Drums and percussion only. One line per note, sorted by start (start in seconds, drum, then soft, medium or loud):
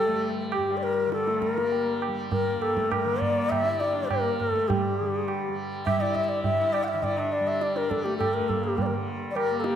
0.52 tabla na medium
1.12 tabla te medium
1.27 tabla te medium
1.42 tabla ke medium
1.58 tabla te medium
1.72 tabla tin medium
2.02 tabla na medium
2.32 tabla tin medium
2.32 tabla ge medium
2.62 tabla na medium
2.77 tabla ke medium
2.92 tabla na medium
2.92 tabla ge medium
3.22 tabla ge medium
3.52 tabla na medium
3.52 tabla ge medium
3.81 tabla te medium
4.11 tabla na medium
4.11 tabla ge medium
4.40 tabla ge medium
4.70 tabla tin loud
4.70 tabla ge loud
5.28 tabla na medium
5.87 tabla na medium
5.87 tabla ge medium
6.15 tabla ge medium
6.44 tabla tin medium
6.44 tabla ge medium
6.74 tabla na medium
7.03 tabla tin medium
7.03 tabla ge medium
7.61 tabla te medium
7.76 tabla te medium
7.91 tabla ke medium
8.06 tabla te medium
8.21 tabla na medium
8.21 tabla ge medium
8.50 tabla ge medium
8.78 tabla tin medium
8.78 tabla ge medium
9.37 tabla na medium
9.64 tabla te medium